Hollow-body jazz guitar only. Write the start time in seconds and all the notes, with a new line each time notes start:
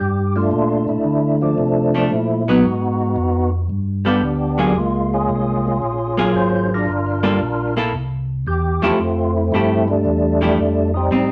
1.94 F3 A3 D4
2.48 F#3 B3 D#4
4.05 G3 B3 F4 A4
4.58 F#3 A#3 F4 G#4
6.17 F#3 A#3 F4 G#4
7.23 G3 A#3 F4 A4
7.77 A#3 E4 A4
8.82 F3 A3 E4 G4
9.54 F3 A3 E4 G4
10.41 F3 A3 E4 G4
11.11 G3 C4 D#4